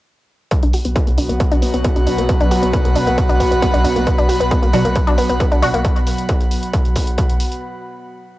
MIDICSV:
0, 0, Header, 1, 7, 480
1, 0, Start_track
1, 0, Key_signature, 2, "minor"
1, 0, Tempo, 444444
1, 555, Time_signature, 4, 2, 24, 8
1, 9059, End_track
2, 0, Start_track
2, 0, Title_t, "Analog synth pad"
2, 0, Program_c, 0, 89
2, 556, Note_on_c, 0, 59, 76
2, 757, Note_on_c, 0, 66, 69
2, 1213, Note_on_c, 0, 78, 92
2, 1676, Note_on_c, 0, 83, 90
2, 8234, Note_off_c, 0, 78, 0
2, 8234, Note_off_c, 0, 83, 0
2, 8235, Note_off_c, 0, 59, 0
2, 8235, Note_off_c, 0, 66, 0
2, 9059, End_track
3, 0, Start_track
3, 0, Title_t, "Synth arpeggio sound"
3, 0, Program_c, 1, 84
3, 554, Note_on_c, 1, 59, 82
3, 596, Note_off_c, 1, 59, 0
3, 678, Note_on_c, 1, 62, 97
3, 744, Note_off_c, 1, 62, 0
3, 795, Note_on_c, 1, 66, 77
3, 837, Note_off_c, 1, 66, 0
3, 918, Note_on_c, 1, 59, 78
3, 984, Note_off_c, 1, 59, 0
3, 1034, Note_on_c, 1, 59, 83
3, 1139, Note_off_c, 1, 59, 0
3, 1157, Note_on_c, 1, 58, 76
3, 1255, Note_off_c, 1, 58, 0
3, 1273, Note_on_c, 1, 62, 76
3, 1344, Note_off_c, 1, 62, 0
3, 1396, Note_on_c, 1, 58, 77
3, 1463, Note_off_c, 1, 58, 0
3, 1512, Note_on_c, 1, 59, 82
3, 1584, Note_off_c, 1, 59, 0
3, 1637, Note_on_c, 1, 62, 99
3, 1703, Note_off_c, 1, 62, 0
3, 1753, Note_on_c, 1, 59, 79
3, 1859, Note_off_c, 1, 59, 0
3, 1878, Note_on_c, 1, 59, 76
3, 1944, Note_off_c, 1, 59, 0
3, 1994, Note_on_c, 1, 59, 78
3, 2099, Note_off_c, 1, 59, 0
3, 2118, Note_on_c, 1, 62, 75
3, 2216, Note_off_c, 1, 62, 0
3, 2233, Note_on_c, 1, 62, 73
3, 2304, Note_off_c, 1, 62, 0
3, 2359, Note_on_c, 1, 58, 72
3, 2424, Note_off_c, 1, 58, 0
3, 2475, Note_on_c, 1, 59, 82
3, 2517, Note_off_c, 1, 59, 0
3, 2599, Note_on_c, 1, 62, 92
3, 2664, Note_off_c, 1, 62, 0
3, 2714, Note_on_c, 1, 66, 79
3, 2757, Note_off_c, 1, 66, 0
3, 2837, Note_on_c, 1, 59, 74
3, 2903, Note_off_c, 1, 59, 0
3, 2953, Note_on_c, 1, 59, 84
3, 3059, Note_off_c, 1, 59, 0
3, 3078, Note_on_c, 1, 58, 75
3, 3176, Note_off_c, 1, 58, 0
3, 3194, Note_on_c, 1, 62, 78
3, 3265, Note_off_c, 1, 62, 0
3, 3317, Note_on_c, 1, 58, 76
3, 3383, Note_off_c, 1, 58, 0
3, 3433, Note_on_c, 1, 59, 82
3, 3504, Note_off_c, 1, 59, 0
3, 3558, Note_on_c, 1, 62, 102
3, 3624, Note_off_c, 1, 62, 0
3, 3673, Note_on_c, 1, 59, 76
3, 3779, Note_off_c, 1, 59, 0
3, 3797, Note_on_c, 1, 59, 76
3, 3863, Note_off_c, 1, 59, 0
3, 3912, Note_on_c, 1, 59, 84
3, 4019, Note_off_c, 1, 59, 0
3, 4037, Note_on_c, 1, 62, 82
3, 4135, Note_off_c, 1, 62, 0
3, 4151, Note_on_c, 1, 62, 72
3, 4223, Note_off_c, 1, 62, 0
3, 4276, Note_on_c, 1, 58, 71
3, 4343, Note_off_c, 1, 58, 0
3, 4393, Note_on_c, 1, 59, 84
3, 4436, Note_off_c, 1, 59, 0
3, 4518, Note_on_c, 1, 62, 96
3, 4583, Note_off_c, 1, 62, 0
3, 4631, Note_on_c, 1, 66, 76
3, 4675, Note_off_c, 1, 66, 0
3, 4756, Note_on_c, 1, 59, 76
3, 4823, Note_off_c, 1, 59, 0
3, 4872, Note_on_c, 1, 59, 85
3, 4978, Note_off_c, 1, 59, 0
3, 4996, Note_on_c, 1, 58, 74
3, 5095, Note_off_c, 1, 58, 0
3, 5113, Note_on_c, 1, 62, 76
3, 5184, Note_off_c, 1, 62, 0
3, 5236, Note_on_c, 1, 58, 78
3, 5303, Note_off_c, 1, 58, 0
3, 5352, Note_on_c, 1, 59, 87
3, 5424, Note_off_c, 1, 59, 0
3, 5478, Note_on_c, 1, 62, 102
3, 5543, Note_off_c, 1, 62, 0
3, 5594, Note_on_c, 1, 59, 81
3, 5699, Note_off_c, 1, 59, 0
3, 5718, Note_on_c, 1, 59, 73
3, 5783, Note_off_c, 1, 59, 0
3, 5832, Note_on_c, 1, 59, 84
3, 5939, Note_off_c, 1, 59, 0
3, 5958, Note_on_c, 1, 62, 78
3, 6056, Note_off_c, 1, 62, 0
3, 6073, Note_on_c, 1, 62, 73
3, 6144, Note_off_c, 1, 62, 0
3, 6197, Note_on_c, 1, 58, 71
3, 6263, Note_off_c, 1, 58, 0
3, 9059, End_track
4, 0, Start_track
4, 0, Title_t, "Synth stab"
4, 0, Program_c, 2, 62
4, 5113, Note_on_c, 2, 66, 99
4, 5114, Note_on_c, 2, 47, 90
4, 5114, Note_on_c, 2, 54, 82
4, 5215, Note_off_c, 2, 66, 0
4, 5216, Note_off_c, 2, 47, 0
4, 5216, Note_off_c, 2, 54, 0
4, 6073, Note_on_c, 2, 54, 93
4, 6073, Note_on_c, 2, 66, 116
4, 6074, Note_on_c, 2, 47, 105
4, 6137, Note_off_c, 2, 54, 0
4, 6137, Note_off_c, 2, 66, 0
4, 6138, Note_off_c, 2, 47, 0
4, 9059, End_track
5, 0, Start_track
5, 0, Title_t, "Ambient pad"
5, 0, Program_c, 3, 92
5, 552, Note_on_c, 3, 54, 75
5, 553, Note_on_c, 3, 47, 78
5, 6363, Note_off_c, 3, 54, 0
5, 6364, Note_off_c, 3, 47, 0
5, 9059, End_track
6, 0, Start_track
6, 0, Title_t, "Sub bass"
6, 0, Program_c, 4, 38
6, 677, Note_on_c, 4, 35, 75
6, 791, Note_off_c, 4, 35, 0
6, 918, Note_on_c, 4, 35, 84
6, 1032, Note_off_c, 4, 35, 0
6, 1158, Note_on_c, 4, 35, 77
6, 1267, Note_off_c, 4, 35, 0
6, 1273, Note_on_c, 4, 35, 95
6, 1392, Note_off_c, 4, 35, 0
6, 1398, Note_on_c, 4, 35, 78
6, 1512, Note_off_c, 4, 35, 0
6, 1639, Note_on_c, 4, 35, 75
6, 1752, Note_off_c, 4, 35, 0
6, 1879, Note_on_c, 4, 35, 79
6, 1992, Note_off_c, 4, 35, 0
6, 2118, Note_on_c, 4, 35, 74
6, 2226, Note_off_c, 4, 35, 0
6, 2233, Note_on_c, 4, 35, 98
6, 2350, Note_off_c, 4, 35, 0
6, 2356, Note_on_c, 4, 35, 82
6, 2471, Note_off_c, 4, 35, 0
6, 2597, Note_on_c, 4, 35, 79
6, 2711, Note_off_c, 4, 35, 0
6, 2837, Note_on_c, 4, 35, 80
6, 2951, Note_off_c, 4, 35, 0
6, 3077, Note_on_c, 4, 35, 77
6, 3186, Note_off_c, 4, 35, 0
6, 3193, Note_on_c, 4, 35, 95
6, 3313, Note_off_c, 4, 35, 0
6, 3320, Note_on_c, 4, 35, 83
6, 3433, Note_off_c, 4, 35, 0
6, 3559, Note_on_c, 4, 35, 76
6, 3672, Note_off_c, 4, 35, 0
6, 3799, Note_on_c, 4, 35, 78
6, 3912, Note_off_c, 4, 35, 0
6, 4039, Note_on_c, 4, 35, 77
6, 4147, Note_off_c, 4, 35, 0
6, 4154, Note_on_c, 4, 35, 99
6, 4271, Note_off_c, 4, 35, 0
6, 4278, Note_on_c, 4, 35, 81
6, 4392, Note_off_c, 4, 35, 0
6, 4518, Note_on_c, 4, 35, 79
6, 4632, Note_off_c, 4, 35, 0
6, 4757, Note_on_c, 4, 35, 86
6, 4871, Note_off_c, 4, 35, 0
6, 4998, Note_on_c, 4, 35, 76
6, 5105, Note_off_c, 4, 35, 0
6, 5111, Note_on_c, 4, 35, 100
6, 5230, Note_off_c, 4, 35, 0
6, 5236, Note_on_c, 4, 35, 81
6, 5351, Note_off_c, 4, 35, 0
6, 5477, Note_on_c, 4, 35, 78
6, 5591, Note_off_c, 4, 35, 0
6, 5717, Note_on_c, 4, 35, 83
6, 5831, Note_off_c, 4, 35, 0
6, 5958, Note_on_c, 4, 35, 76
6, 6066, Note_off_c, 4, 35, 0
6, 6072, Note_on_c, 4, 35, 96
6, 6191, Note_off_c, 4, 35, 0
6, 6198, Note_on_c, 4, 35, 80
6, 6312, Note_off_c, 4, 35, 0
6, 9059, End_track
7, 0, Start_track
7, 0, Title_t, "Drums"
7, 552, Note_on_c, 9, 42, 82
7, 554, Note_on_c, 9, 36, 117
7, 660, Note_off_c, 9, 42, 0
7, 662, Note_off_c, 9, 36, 0
7, 676, Note_on_c, 9, 42, 53
7, 784, Note_off_c, 9, 42, 0
7, 792, Note_on_c, 9, 46, 105
7, 900, Note_off_c, 9, 46, 0
7, 917, Note_on_c, 9, 42, 54
7, 1025, Note_off_c, 9, 42, 0
7, 1033, Note_on_c, 9, 36, 118
7, 1033, Note_on_c, 9, 42, 81
7, 1141, Note_off_c, 9, 36, 0
7, 1141, Note_off_c, 9, 42, 0
7, 1157, Note_on_c, 9, 42, 51
7, 1265, Note_off_c, 9, 42, 0
7, 1271, Note_on_c, 9, 46, 91
7, 1379, Note_off_c, 9, 46, 0
7, 1398, Note_on_c, 9, 42, 52
7, 1506, Note_off_c, 9, 42, 0
7, 1512, Note_on_c, 9, 42, 86
7, 1513, Note_on_c, 9, 36, 116
7, 1620, Note_off_c, 9, 42, 0
7, 1621, Note_off_c, 9, 36, 0
7, 1638, Note_on_c, 9, 42, 57
7, 1746, Note_off_c, 9, 42, 0
7, 1752, Note_on_c, 9, 46, 101
7, 1860, Note_off_c, 9, 46, 0
7, 1878, Note_on_c, 9, 42, 53
7, 1986, Note_off_c, 9, 42, 0
7, 1992, Note_on_c, 9, 42, 80
7, 1994, Note_on_c, 9, 36, 109
7, 2100, Note_off_c, 9, 42, 0
7, 2102, Note_off_c, 9, 36, 0
7, 2118, Note_on_c, 9, 42, 52
7, 2226, Note_off_c, 9, 42, 0
7, 2233, Note_on_c, 9, 46, 85
7, 2341, Note_off_c, 9, 46, 0
7, 2358, Note_on_c, 9, 42, 54
7, 2466, Note_off_c, 9, 42, 0
7, 2473, Note_on_c, 9, 42, 79
7, 2474, Note_on_c, 9, 36, 117
7, 2581, Note_off_c, 9, 42, 0
7, 2582, Note_off_c, 9, 36, 0
7, 2597, Note_on_c, 9, 42, 54
7, 2705, Note_off_c, 9, 42, 0
7, 2713, Note_on_c, 9, 46, 110
7, 2821, Note_off_c, 9, 46, 0
7, 2838, Note_on_c, 9, 42, 54
7, 2946, Note_off_c, 9, 42, 0
7, 2953, Note_on_c, 9, 42, 83
7, 2954, Note_on_c, 9, 36, 120
7, 3061, Note_off_c, 9, 42, 0
7, 3062, Note_off_c, 9, 36, 0
7, 3078, Note_on_c, 9, 42, 55
7, 3186, Note_off_c, 9, 42, 0
7, 3192, Note_on_c, 9, 46, 89
7, 3300, Note_off_c, 9, 46, 0
7, 3318, Note_on_c, 9, 42, 53
7, 3426, Note_off_c, 9, 42, 0
7, 3433, Note_on_c, 9, 42, 86
7, 3434, Note_on_c, 9, 36, 117
7, 3541, Note_off_c, 9, 42, 0
7, 3542, Note_off_c, 9, 36, 0
7, 3558, Note_on_c, 9, 42, 57
7, 3666, Note_off_c, 9, 42, 0
7, 3673, Note_on_c, 9, 36, 61
7, 3674, Note_on_c, 9, 46, 104
7, 3781, Note_off_c, 9, 36, 0
7, 3782, Note_off_c, 9, 46, 0
7, 3799, Note_on_c, 9, 42, 54
7, 3907, Note_off_c, 9, 42, 0
7, 3914, Note_on_c, 9, 36, 117
7, 3914, Note_on_c, 9, 42, 79
7, 4022, Note_off_c, 9, 36, 0
7, 4022, Note_off_c, 9, 42, 0
7, 4038, Note_on_c, 9, 42, 55
7, 4146, Note_off_c, 9, 42, 0
7, 4153, Note_on_c, 9, 46, 86
7, 4261, Note_off_c, 9, 46, 0
7, 4277, Note_on_c, 9, 42, 57
7, 4385, Note_off_c, 9, 42, 0
7, 4393, Note_on_c, 9, 36, 114
7, 4393, Note_on_c, 9, 42, 82
7, 4501, Note_off_c, 9, 36, 0
7, 4501, Note_off_c, 9, 42, 0
7, 4518, Note_on_c, 9, 42, 51
7, 4626, Note_off_c, 9, 42, 0
7, 4633, Note_on_c, 9, 46, 112
7, 4741, Note_off_c, 9, 46, 0
7, 4759, Note_on_c, 9, 42, 54
7, 4867, Note_off_c, 9, 42, 0
7, 4873, Note_on_c, 9, 42, 80
7, 4874, Note_on_c, 9, 36, 126
7, 4981, Note_off_c, 9, 42, 0
7, 4982, Note_off_c, 9, 36, 0
7, 4998, Note_on_c, 9, 42, 52
7, 5106, Note_off_c, 9, 42, 0
7, 5112, Note_on_c, 9, 46, 93
7, 5220, Note_off_c, 9, 46, 0
7, 5238, Note_on_c, 9, 42, 54
7, 5346, Note_off_c, 9, 42, 0
7, 5352, Note_on_c, 9, 42, 83
7, 5354, Note_on_c, 9, 36, 121
7, 5460, Note_off_c, 9, 42, 0
7, 5462, Note_off_c, 9, 36, 0
7, 5477, Note_on_c, 9, 42, 54
7, 5585, Note_off_c, 9, 42, 0
7, 5593, Note_on_c, 9, 46, 105
7, 5701, Note_off_c, 9, 46, 0
7, 5718, Note_on_c, 9, 42, 55
7, 5826, Note_off_c, 9, 42, 0
7, 5834, Note_on_c, 9, 36, 122
7, 5834, Note_on_c, 9, 42, 79
7, 5942, Note_off_c, 9, 36, 0
7, 5942, Note_off_c, 9, 42, 0
7, 5958, Note_on_c, 9, 42, 52
7, 6066, Note_off_c, 9, 42, 0
7, 6075, Note_on_c, 9, 46, 96
7, 6183, Note_off_c, 9, 46, 0
7, 6199, Note_on_c, 9, 42, 52
7, 6307, Note_off_c, 9, 42, 0
7, 6314, Note_on_c, 9, 36, 119
7, 6314, Note_on_c, 9, 42, 81
7, 6422, Note_off_c, 9, 36, 0
7, 6422, Note_off_c, 9, 42, 0
7, 6439, Note_on_c, 9, 42, 54
7, 6547, Note_off_c, 9, 42, 0
7, 6553, Note_on_c, 9, 46, 111
7, 6661, Note_off_c, 9, 46, 0
7, 6678, Note_on_c, 9, 42, 53
7, 6786, Note_off_c, 9, 42, 0
7, 6792, Note_on_c, 9, 42, 77
7, 6794, Note_on_c, 9, 36, 121
7, 6900, Note_off_c, 9, 42, 0
7, 6902, Note_off_c, 9, 36, 0
7, 6918, Note_on_c, 9, 42, 53
7, 7026, Note_off_c, 9, 42, 0
7, 7033, Note_on_c, 9, 46, 94
7, 7141, Note_off_c, 9, 46, 0
7, 7158, Note_on_c, 9, 42, 51
7, 7266, Note_off_c, 9, 42, 0
7, 7274, Note_on_c, 9, 36, 122
7, 7274, Note_on_c, 9, 42, 81
7, 7382, Note_off_c, 9, 36, 0
7, 7382, Note_off_c, 9, 42, 0
7, 7399, Note_on_c, 9, 42, 55
7, 7507, Note_off_c, 9, 42, 0
7, 7513, Note_on_c, 9, 46, 111
7, 7515, Note_on_c, 9, 36, 65
7, 7621, Note_off_c, 9, 46, 0
7, 7623, Note_off_c, 9, 36, 0
7, 7637, Note_on_c, 9, 42, 54
7, 7745, Note_off_c, 9, 42, 0
7, 7753, Note_on_c, 9, 42, 78
7, 7755, Note_on_c, 9, 36, 124
7, 7861, Note_off_c, 9, 42, 0
7, 7863, Note_off_c, 9, 36, 0
7, 7878, Note_on_c, 9, 42, 50
7, 7986, Note_off_c, 9, 42, 0
7, 7992, Note_on_c, 9, 46, 92
7, 8100, Note_off_c, 9, 46, 0
7, 8118, Note_on_c, 9, 42, 53
7, 8226, Note_off_c, 9, 42, 0
7, 9059, End_track
0, 0, End_of_file